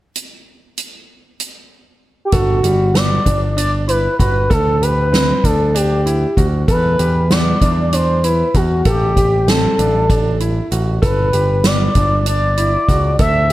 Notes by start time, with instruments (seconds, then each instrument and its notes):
0.16 closed hi-hat
0.78 closed hi-hat
1.40 closed hi-hat
2.25 analog synth lead G4
2.32 picked electric bass G1, analog synth lead F#4, grand piano A4, kick, closed hi-hat
2.63 picked electric bass G1, grand piano G3, closed hi-hat
2.94 grand piano B3, analog synth lead D5, snare, closed hi-hat
3.25 picked electric bass G1, grand piano D4, kick, closed hi-hat
3.57 grand piano D4, analog synth lead D5, closed hi-hat
3.88 grand piano E4, analog synth lead B4, closed hi-hat
4.19 picked electric bass G1, grand piano F#4, analog synth lead B4, kick, closed hi-hat
4.50 picked electric bass D2, grand piano A4, analog synth lead A4, kick, closed hi-hat
4.82 grand piano G4, analog synth lead B4, closed hi-hat
5.12 grand piano C4, snare, closed hi-hat
5.44 picked electric bass D2, grand piano D4, analog synth lead A4, kick, closed hi-hat
5.75 grand piano D4, analog synth lead G4, closed hi-hat
6.06 grand piano E4, closed hi-hat
6.37 picked electric bass D2, grand piano F#4, kick, closed hi-hat
6.68 picked electric bass E2, grand piano A4, analog synth lead B4, kick, closed hi-hat
6.99 picked electric bass E2, grand piano G4, closed hi-hat
7.31 grand piano B3, analog synth lead D5, snare, closed hi-hat
7.61 picked electric bass E2, grand piano D4, kick, closed hi-hat
7.93 grand piano D4, analog synth lead C5, closed hi-hat
8.24 grand piano E4, analog synth lead B4, closed hi-hat
8.54 picked electric bass E2, grand piano F#4, analog synth lead F#4, kick, closed hi-hat
8.85 picked electric bass A1, analog synth lead G4, grand piano A4, kick, closed hi-hat
9.17 grand piano G4, kick, closed hi-hat
9.48 grand piano C4, analog synth lead A4, snare, closed hi-hat
9.79 picked electric bass A1, grand piano D4, closed hi-hat
10.10 grand piano D4, kick, closed hi-hat
10.40 grand piano E4, closed hi-hat
10.71 picked electric bass A1, grand piano F#4, closed hi-hat
11.02 picked electric bass G1, grand piano A4, analog synth lead B4, kick, closed hi-hat
11.33 picked electric bass G1, grand piano G4, closed hi-hat
11.64 grand piano B3, analog synth lead D5, snare, closed hi-hat
11.95 picked electric bass G1, grand piano D4, kick, closed hi-hat
12.26 grand piano D4, analog synth lead D5, closed hi-hat
12.57 grand piano E4, closed hi-hat
12.89 picked electric bass C#2, grand piano F#4, kick, closed hi-hat
13.19 picked electric bass D2, grand piano A4, analog synth lead E5, kick, closed hi-hat